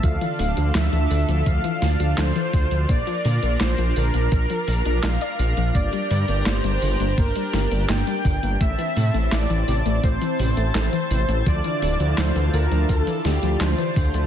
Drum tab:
HH |xxoxxxoxxxoxxxox|xxoxxxoxxxoxxxox|xxoxxxoxxxoxxxox|xxoxxxoxxxoxxxox|
CP |----x-------x---|----x-------x---|----x-------x---|----x-------x---|
SD |----o-----o-o---|----o-------o---|----o-----o-o---|----o-------o---|
BD |o-------o-----o-|o-------o-------|o-------o-----o-|o-------o-------|

HH |xxoxxxoxxxoxxxox|
CP |----x-------x---|
SD |----o-----o-o---|
BD |o-------o-----o-|